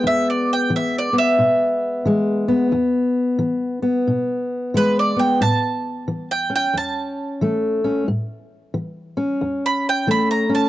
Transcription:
Already playing: G#3 B3
0.04 E2 E5
0.30 D5
0.53 G5
0.70 E3
0.76 E5
0.98 D5
1.13 B3
1.18 E5
1.39 B2
2.05 E3 G#3
2.48 B3
2.72 E2
3.39 E3
3.82 B3
4.07 B2
4.74 E3 G#3 B4
4.99 D5
5.16 B3 G5
5.41 A2 A5
6.08 E3
6.31 G5
6.50 C#4
6.55 G5
6.74 E2 A5
7.41 E3 A3
7.84 C#4
8.08 A2
8.74 E3
9.17 C#4
9.41 E2
9.66 B5
9.89 G5
10.07 E3 A3 B5
10.31 A#5
10.49 C#4
10.55 A5

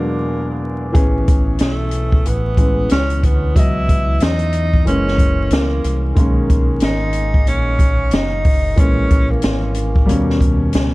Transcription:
Already playing: E2 B2 F#3 G#3 A#3 D4
0.92 A1 E3 B3 C#4 G#4, kick, closed hi-hat
1.28 kick, closed hi-hat
1.59 B1 A3, snare, closed hi-hat
1.91 closed hi-hat
2.12 kick
2.26 A1 B3, closed hi-hat
2.57 E3 G#3 B3 C#4, kick, closed hi-hat
2.89 C#2 C#4, snare, closed hi-hat
3.10 closed hi-hat
3.23 D2 B3, kick, closed hi-hat
3.55 C#2 E3 F#3 B3 E4, kick, closed hi-hat
3.59 D#5
3.89 kick, closed hi-hat
4.20 E2 D#4, snare, closed hi-hat
4.39 closed hi-hat
4.53 closed hi-hat
4.73 kick
4.85 F#1 E3 G#3 A#3 C#4, closed hi-hat
4.89 C#4
5.08 snare
5.18 kick, closed hi-hat
5.51 C#2 A#3, snare, closed hi-hat
5.84 C2, closed hi-hat
6.15 B1 D#3 G#3 A#3 C#4, kick, closed hi-hat
6.50 kick, closed hi-hat
6.80 G#1 D#4, snare, closed hi-hat
7.13 closed hi-hat
7.34 kick
7.47 A#1 C#4, closed hi-hat
7.79 kick, closed hi-hat
8.11 F#1 D#4, snare, closed hi-hat
8.45 kick, open hi-hat
8.76 A#1 E3 G#3 A#3 C#4, kick, closed hi-hat
9.11 kick, closed hi-hat
9.31 A#3
9.42 G#1, snare, closed hi-hat
9.75 closed hi-hat
9.96 kick
10.06 D#2 B2 G3 A#3, closed hi-hat
10.10 C#4
10.30 snare
10.41 kick, closed hi-hat
10.73 C#2, snare, closed hi-hat

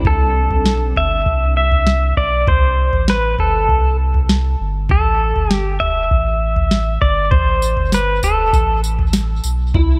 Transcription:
0.05 C2 A4, kick, floor tom
0.50 B1, floor tom
0.66 snare
0.96 G1 E5, floor tom
1.26 C2, kick, floor tom
1.57 E5
1.72 floor tom
1.87 snare
2.17 B1 D5, kick
2.47 C2 C5, kick, floor tom
2.93 A1, floor tom
3.08 B4, snare
3.39 G1 A4, floor tom
3.69 C2, kick, floor tom
4.14 floor tom
4.29 snare
4.61 G1
4.89 A1 A4, kick, floor tom
5.36 G1, floor tom
5.51 G4, snare
5.80 E1 E5, floor tom
6.11 A1, kick, floor tom
6.56 floor tom
6.71 snare
7.02 G1 D5, kick
7.31 A1 C5, kick, floor tom
7.62 tambourine
7.77 G1, floor tom
7.92 B4, snare, tambourine
8.23 E1 A4, floor tom, tambourine
8.53 A1, kick, floor tom, tambourine
8.84 tambourine
8.99 floor tom
9.13 snare, tambourine
9.44 B1, tambourine
9.74 C2 G3 A3 C4 D4 E4, kick, floor tom

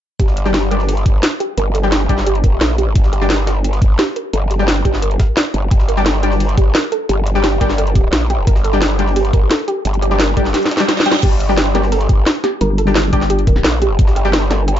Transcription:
0.20 G1 G4, kick, closed hi-hat
0.28 snare
0.37 closed hi-hat
0.45 G3 D4 G4, snare
0.54 G4, snare, closed hi-hat
0.71 G3 D4 G4 A#4, closed hi-hat
0.80 snare
0.89 A4, closed hi-hat, open hi-hat
0.97 closed hi-hat
1.06 G1 G4, kick, closed hi-hat
1.23 snare, closed hi-hat
1.32 closed hi-hat
1.40 G4, closed hi-hat
1.58 G1 A#4, closed hi-hat
1.75 A4, closed hi-hat
1.83 G3 D4 G4, snare
1.92 G4, snare, closed hi-hat
2.09 G1 G3 D4 G4, kick, closed hi-hat
2.18 snare
2.27 G4, closed hi-hat
2.35 closed hi-hat
2.44 A#4, kick, closed hi-hat
2.61 A#1 A4, snare, closed hi-hat
2.78 G4, closed hi-hat
2.96 G1, kick, closed hi-hat
3.04 snare
3.13 G4, closed hi-hat
3.21 G3 D4 G4, snare
3.30 A#4, snare, closed hi-hat
3.47 A4, snare, closed hi-hat
3.64 G4, closed hi-hat
3.73 snare, closed hi-hat
3.82 G1, kick, closed hi-hat
3.99 G4, snare, closed hi-hat
4.08 closed hi-hat
4.16 A#4, closed hi-hat
4.33 G1 A4, closed hi-hat
4.51 G4, closed hi-hat
4.59 G3 D4 G4, snare
4.68 snare, closed hi-hat
4.85 G1 G4, kick, closed hi-hat
4.94 snare
5.02 A#4, closed hi-hat
5.11 closed hi-hat
5.20 G4, kick, snare, closed hi-hat
5.37 D5, snare, closed hi-hat
5.54 G1, closed hi-hat
5.71 G1 G4, kick, closed hi-hat
5.80 snare
5.89 A#4, closed hi-hat
5.97 G3 D4 G4, snare
6.06 A4, snare, closed hi-hat
6.23 G3 D4 G4, closed hi-hat
6.32 snare
6.40 closed hi-hat, open hi-hat
6.49 closed hi-hat
6.57 G1 G4, kick, closed hi-hat
6.75 A#4, snare, closed hi-hat
6.83 closed hi-hat
6.92 A4, closed hi-hat
7.09 G1 G4, closed hi-hat
7.26 closed hi-hat
7.35 G3 D4 G4, snare
7.44 G4, snare, closed hi-hat
7.61 G1 G3 D4 G4 A#4, kick, closed hi-hat
7.70 snare
7.78 A4, closed hi-hat
7.87 closed hi-hat
7.95 G4, kick, closed hi-hat
8.13 A#1, snare, closed hi-hat
8.30 G4, closed hi-hat
8.47 G1 A#4, kick, closed hi-hat
8.56 snare
8.64 A4, closed hi-hat
8.73 G3 D4 G4, snare
8.82 G4, snare, closed hi-hat
8.99 G3 D4 G4, closed hi-hat
9.08 snare
9.16 G4, closed hi-hat, open hi-hat
9.25 closed hi-hat
9.33 G1 A#4, kick, closed hi-hat
9.51 A4, snare, closed hi-hat
9.59 closed hi-hat
9.68 G4, closed hi-hat
9.85 G1, closed hi-hat
9.94 closed hi-hat
10.02 G4, closed hi-hat
10.11 G3 D4 G4, snare
10.20 A#4, snare, closed hi-hat
10.37 G1 G3 D4 G4 A4, kick, closed hi-hat
10.45 snare
10.54 G4, snare, closed hi-hat, reverse cymbal
10.63 snare, closed hi-hat
10.71 snare, closed hi-hat
10.77 D4 G4, snare
10.80 G3, snare, closed hi-hat
10.89 D5, snare, closed hi-hat
10.97 snare, closed hi-hat
11.00 snare
11.06 G3 D4 G4 G5, snare, closed hi-hat
11.12 snare
11.15 snare, closed hi-hat
11.19 snare, closed hi-hat
11.23 G1 G4, kick, closed hi-hat, crash
11.32 snare
11.40 closed hi-hat
11.49 G3 D4 G4, snare
11.58 G4, snare, closed hi-hat
11.75 G3 D4 G4 A#4, snare, closed hi-hat
11.83 snare
11.92 A4, closed hi-hat, open hi-hat
12.01 closed hi-hat
12.09 G1 G4, kick, closed hi-hat
12.26 snare, closed hi-hat
12.35 closed hi-hat
12.44 G4, snare, closed hi-hat
12.61 G1 A#4, closed hi-hat
12.78 A4, closed hi-hat
12.87 G3 D4 G4, snare
12.95 G4, snare, closed hi-hat
13.13 G1 G3 D4 G4, kick, closed hi-hat
13.21 snare
13.30 G4, closed hi-hat
13.39 closed hi-hat
13.47 A#4, kick, closed hi-hat
13.56 snare
13.64 A#1 A4, snare, closed hi-hat
13.82 G4, closed hi-hat
13.99 G1, kick, closed hi-hat
14.08 snare
14.16 G4, closed hi-hat
14.25 G3 D4 G4, snare
14.33 A#4, snare, closed hi-hat
14.51 A4, snare, closed hi-hat
14.68 G4, closed hi-hat
14.77 snare, closed hi-hat

